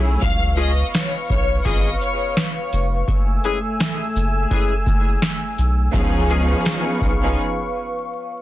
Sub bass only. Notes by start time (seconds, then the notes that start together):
Already playing: B1
0.22 C#2
1.30 B1
1.65 G#1
2.73 F1
3.08 F#1
4.16 F#1
4.87 F#1
5.58 B1
5.94 C#2
7.02 B1